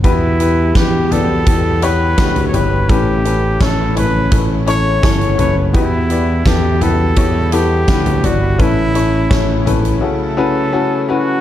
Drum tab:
HH |x-x-x-x-x-x-xxx-|x-x-x-x-x-x-xxx-|x-x-x-x-x-x-xxx-|x-x-x-xx--------|
SD |----o-------o---|----o-------o---|----o-------o---|----o-----------|
FT |------o------oo-|------o-------o-|------o------oo-|------o---------|
BD |o---o---o---o---|o---o---o---o---|o---o---o---o---|o---o-----------|